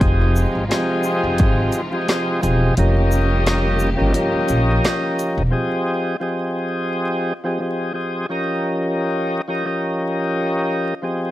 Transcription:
0.00 0.43 F1 loud
0.00 2.74 C3 medium
0.00 0.64 F3 loud
0.00 2.74 F3 medium
0.00 2.74 G#3 medium
0.00 0.64 C4 medium
0.00 5.49 D#4 medium
0.00 2.74 F4 medium
0.00 0.65 G4 medium
0.00 0.65 G#4 medium
0.00 0.65 D#5 loud
0.00 kick loud
0.00 closed hi-hat medium
0.36 shaker medium
0.55 0.67 G#1 medium
0.68 1.81 F3 loud
0.68 1.81 C4 medium
0.68 1.82 G4 medium
0.68 1.82 G#4 medium
0.68 1.82 D#5 loud
0.68 snare loud
0.68 snare medium
0.68 closed hi-hat medium
1.04 shaker medium
1.24 1.40 F1 medium
1.38 1.67 G#1 medium
1.38 kick loud
1.38 closed hi-hat medium
1.72 closed hi-hat medium
1.72 shaker medium
1.92 2.07 F3 medium
1.92 2.07 C4 medium
1.92 2.08 G4 medium
1.92 2.09 G#4 medium
1.92 2.09 D#5 loud
2.08 2.40 F3 medium
2.08 2.40 C4 medium
2.08 2.41 G4 medium
2.08 2.41 G#4 medium
2.08 2.41 D#5 medium
2.08 snare loud
2.08 snare medium
2.08 closed hi-hat medium
2.41 2.70 E1 medium
2.41 2.74 F3 medium
2.41 2.74 C4 medium
2.41 2.74 G4 medium
2.41 2.75 G#4 medium
2.41 2.75 D#5 medium
2.41 closed hi-hat medium
2.41 shaker medium
2.77 3.96 F1 loud
2.77 5.50 C#3 medium
2.77 3.89 F3 medium
2.77 5.50 G3 medium
2.77 5.50 A#3 medium
2.77 3.89 C#4 medium
2.77 5.50 G4 medium
2.77 3.90 G4 medium
2.77 3.90 A#4 medium
2.77 3.90 D#5 loud
2.77 closed hi-hat medium
3.12 shaker medium
3.47 snare loud
3.47 snare medium
3.47 closed hi-hat medium
3.79 shaker medium
3.96 4.12 G1 medium
3.96 4.12 F3 loud
3.96 4.12 C#4 medium
3.96 4.13 G4 medium
3.96 4.14 A#4 medium
3.96 4.14 D#5 loud
4.13 5.42 F3 loud
4.13 5.42 C#4 medium
4.13 5.43 G4 medium
4.13 5.43 A#4 medium
4.13 5.43 D#5 loud
4.13 closed hi-hat medium
4.34 muted upright bass stroke soft
4.48 4.77 A#1 medium
4.48 closed hi-hat medium
4.48 shaker medium
4.84 snare loud
4.84 snare medium
4.84 closed hi-hat medium
5.19 closed hi-hat medium
5.19 shaker medium
5.38 5.50 E1 medium
5.50 6.16 F3 medium
5.50 6.16 C4 medium
5.50 6.16 G4 medium
5.50 6.17 G#4 medium
5.50 6.17 D#5 medium
6.20 7.33 F3 medium
6.20 7.33 C4 medium
6.20 7.33 G4 medium
6.20 7.34 G#4 medium
6.20 7.34 D#5 medium
7.44 7.58 F3 medium
7.44 7.59 C4 medium
7.44 7.60 G4 medium
7.44 7.60 G#4 medium
7.44 7.61 D#5 loud
7.60 7.92 F3 medium
7.60 7.92 C4 medium
7.60 7.92 G4 medium
7.60 7.93 G#4 medium
7.60 7.93 D#5 medium
7.93 8.26 F3 medium
7.93 8.26 C4 medium
7.93 8.26 G4 medium
7.93 8.27 G#4 medium
7.93 8.27 D#5 medium
8.29 9.41 F3 medium
8.29 9.41 C#4 medium
8.29 9.41 G4 medium
8.29 9.42 A#4 medium
8.29 9.42 D#5 loud
9.48 9.64 F3 medium
9.48 9.64 C#4 medium
9.48 9.65 G4 medium
9.48 9.66 A#4 medium
9.48 9.66 D#5 loud
9.65 10.94 F3 medium
9.65 10.94 C#4 medium
9.65 10.94 G4 medium
9.65 10.95 A#4 medium
9.65 10.95 D#5 loud
11.02 11.31 F3 loud
11.02 11.31 C4 medium
11.02 11.31 G4 medium
11.02 11.31 G#4 medium
11.02 11.31 D#5 loud

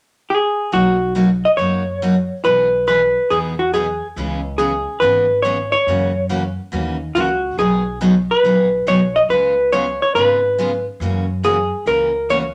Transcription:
0.30 0.73 G#4 medium
0.72 1.41 B1 medium
0.72 0.95 B2 medium
0.72 0.95 F#3 medium
0.72 0.96 A#3 medium
0.72 0.96 D#4 medium
0.72 0.96 F#4 medium
0.72 1.13 F#4 medium
1.15 1.27 B2 medium
1.15 1.28 F#3 medium
1.15 1.28 A#3 medium
1.15 1.28 D#4 medium
1.15 1.28 F#4 medium
1.45 1.50 D#5 medium
1.57 2.27 F#1 medium
1.57 1.82 B2 medium
1.57 1.82 F#3 medium
1.57 1.82 A#3 medium
1.57 1.82 D#4 medium
1.57 1.82 F#4 medium
1.57 2.44 C#5 loud
2.02 2.14 B2 medium
2.02 2.14 F#3 medium
2.02 2.14 A#3 medium
2.02 2.14 D#4 medium
2.02 2.14 F#4 medium
2.44 3.13 B1 medium
2.44 2.67 B2 medium
2.44 2.67 E3 medium
2.44 2.68 B3 medium
2.44 2.67 D#4 medium
2.44 2.68 G#4 medium
2.44 2.86 B4 medium
2.87 2.99 B2 medium
2.87 3.00 E3 medium
2.87 3.00 B3 medium
2.87 3.00 D#4 medium
2.87 3.00 G#4 medium
2.87 3.31 B4 medium
3.30 3.99 E2 medium
3.30 3.53 B2 medium
3.30 3.53 E3 medium
3.30 3.53 B3 medium
3.30 3.53 D#4 medium
3.30 3.38 G#4 medium
3.30 3.54 G#4 medium
3.59 3.73 F#4 medium
3.73 3.85 B2 medium
3.73 3.85 E3 medium
3.73 3.85 B3 medium
3.73 3.86 D#4 medium
3.73 4.07 G#4 medium
3.73 3.86 G#4 medium
4.16 4.84 C#2 medium
4.16 4.39 C#3 medium
4.16 4.40 E3 medium
4.16 4.40 B3 medium
4.16 4.40 C#4 medium
4.16 4.40 G#4 medium
4.58 4.70 C#3 medium
4.58 4.71 E3 medium
4.58 4.71 B3 medium
4.58 4.71 C#4 medium
4.58 4.98 G#4 medium
4.58 4.71 G#4 medium
5.00 5.70 G#1 medium
5.00 5.24 C#3 medium
5.00 5.24 E3 medium
5.00 5.24 B3 medium
5.00 5.25 C#4 medium
5.00 5.25 G#4 medium
5.00 5.40 B4 medium
5.42 5.56 C#3 medium
5.42 5.56 E3 medium
5.42 5.57 B3 medium
5.42 5.57 C#4 medium
5.42 5.57 G#4 medium
5.42 5.71 C#5 medium
5.72 6.25 C#5 medium
5.87 6.55 F#2 medium
5.87 6.10 C#3 medium
5.87 6.10 E3 medium
5.87 6.10 A#3 medium
5.87 6.11 C#4 medium
5.87 6.11 F#4 medium
6.29 6.42 C#3 medium
6.29 6.42 E3 medium
6.29 6.42 A#3 medium
6.29 6.42 C#4 medium
6.29 6.42 F#4 medium
6.72 7.09 D#2 medium
6.72 6.95 C#3 medium
6.72 6.95 E3 medium
6.72 6.96 A#3 medium
6.72 6.95 C#4 medium
6.72 6.95 F#4 medium
7.15 7.51 C#2 medium
7.15 7.27 C#3 medium
7.15 7.27 E3 medium
7.15 7.28 A#3 medium
7.15 7.28 C#4 medium
7.15 7.58 F#4 medium
7.15 7.28 F#4 medium
7.57 8.26 B1 medium
7.57 7.81 B2 medium
7.57 7.81 D#3 medium
7.57 7.81 F#3 medium
7.57 7.81 B3 medium
7.57 7.82 D#4 medium
7.57 7.98 G#4 medium
7.57 7.82 G#4 medium
8.01 8.13 B2 medium
8.01 8.13 D#3 medium
8.01 8.13 F#3 medium
8.01 8.13 B3 medium
8.01 8.13 D#4 medium
8.01 8.13 G#4 medium
8.31 8.88 B4 medium
8.43 8.80 A#1 medium
8.43 8.67 B2 medium
8.43 8.67 D#3 medium
8.43 8.67 F#3 medium
8.43 8.67 B3 medium
8.43 8.67 D#4 medium
8.43 8.67 G#4 medium
8.87 9.23 B1 medium
8.87 8.99 B2 medium
8.87 8.99 D#3 medium
8.87 8.99 F#3 medium
8.87 8.99 B3 medium
8.87 8.99 D#4 medium
8.87 8.99 G#4 medium
8.87 9.15 C#5 medium
9.16 9.21 D#5 loud
9.29 9.98 C#2 medium
9.29 9.53 C#3 medium
9.29 9.53 G#3 medium
9.29 9.53 B3 medium
9.29 9.53 F4 medium
9.29 9.53 G#4 medium
9.29 9.72 B4 medium
9.72 9.84 C#3 medium
9.72 9.84 G#3 medium
9.72 9.85 B3 medium
9.72 9.85 F4 medium
9.72 9.85 G#4 medium
9.72 10.01 C#5 loud
10.02 10.15 C#5 medium
10.15 10.83 G#1 medium
10.15 10.38 C#3 medium
10.15 10.38 G#3 medium
10.15 10.39 B3 medium
10.15 10.39 F4 medium
10.15 10.39 G#4 medium
10.15 10.83 B4 medium
10.58 10.70 C#3 medium
10.58 10.70 G#3 medium
10.58 10.70 B3 medium
10.58 10.71 F4 medium
10.58 10.71 G#4 medium
11.00 11.69 F#2 medium
11.00 11.24 C#3 medium
11.00 11.24 E3 medium
11.00 11.24 A#3 medium
11.00 11.25 C#4 medium
11.00 11.24 F#4 medium
11.44 11.56 C#3 medium
11.44 11.56 E3 medium
11.44 11.56 A#3 medium
11.44 11.56 C#4 medium
11.44 11.56 F#4 medium
11.44 11.87 G#4 medium
11.86 12.54 C#2 medium
11.86 12.09 C#3 medium
11.86 12.09 E3 medium
11.86 12.10 A#3 medium
11.86 12.10 C#4 medium
11.86 12.10 F#4 medium
11.86 12.31 A#4 medium
12.29 12.41 C#3 medium
12.29 12.41 E3 medium
12.29 12.42 A#3 medium
12.29 12.42 C#4 medium
12.29 12.42 F#4 medium
12.29 12.38 C#5 medium

